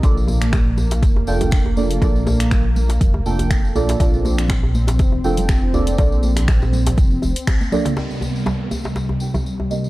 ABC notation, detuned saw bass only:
X:1
M:4/4
L:1/8
Q:"Swing 16ths" 1/4=121
K:Bb
V:1 name="Detuned saw bass" clef=bass
B,,,4 F,,, F,,,3 | B,,,4 F,,, F,,,2 B,,, | B,,,4 F,,, F,,,3 | B,,,4 F,,, F,,, z2 |
z8 |]